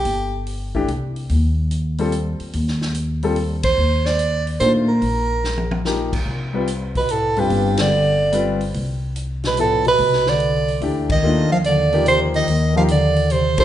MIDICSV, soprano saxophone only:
0, 0, Header, 1, 2, 480
1, 0, Start_track
1, 0, Tempo, 413793
1, 65, Time_signature, 3, 2, 24, 8
1, 15829, End_track
2, 0, Start_track
2, 0, Title_t, "Soprano saxophone"
2, 0, Program_c, 0, 64
2, 0, Note_on_c, 0, 67, 75
2, 509, Note_off_c, 0, 67, 0
2, 4226, Note_on_c, 0, 72, 92
2, 4714, Note_on_c, 0, 74, 84
2, 4731, Note_off_c, 0, 72, 0
2, 5192, Note_off_c, 0, 74, 0
2, 5339, Note_on_c, 0, 72, 80
2, 5486, Note_off_c, 0, 72, 0
2, 5669, Note_on_c, 0, 70, 73
2, 6741, Note_off_c, 0, 70, 0
2, 8093, Note_on_c, 0, 71, 73
2, 8255, Note_on_c, 0, 69, 79
2, 8273, Note_off_c, 0, 71, 0
2, 8582, Note_on_c, 0, 67, 78
2, 8599, Note_off_c, 0, 69, 0
2, 9046, Note_off_c, 0, 67, 0
2, 9066, Note_on_c, 0, 74, 83
2, 9962, Note_off_c, 0, 74, 0
2, 10984, Note_on_c, 0, 71, 73
2, 11116, Note_off_c, 0, 71, 0
2, 11146, Note_on_c, 0, 69, 88
2, 11429, Note_off_c, 0, 69, 0
2, 11466, Note_on_c, 0, 71, 93
2, 11944, Note_on_c, 0, 74, 82
2, 11961, Note_off_c, 0, 71, 0
2, 12565, Note_off_c, 0, 74, 0
2, 12903, Note_on_c, 0, 75, 86
2, 13335, Note_off_c, 0, 75, 0
2, 13368, Note_on_c, 0, 77, 75
2, 13435, Note_off_c, 0, 77, 0
2, 13526, Note_on_c, 0, 74, 86
2, 13965, Note_off_c, 0, 74, 0
2, 14017, Note_on_c, 0, 72, 83
2, 14156, Note_off_c, 0, 72, 0
2, 14338, Note_on_c, 0, 75, 92
2, 14772, Note_off_c, 0, 75, 0
2, 14821, Note_on_c, 0, 77, 78
2, 14886, Note_off_c, 0, 77, 0
2, 14985, Note_on_c, 0, 74, 82
2, 15454, Note_on_c, 0, 72, 84
2, 15471, Note_off_c, 0, 74, 0
2, 15764, Note_off_c, 0, 72, 0
2, 15776, Note_on_c, 0, 72, 91
2, 15829, Note_off_c, 0, 72, 0
2, 15829, End_track
0, 0, End_of_file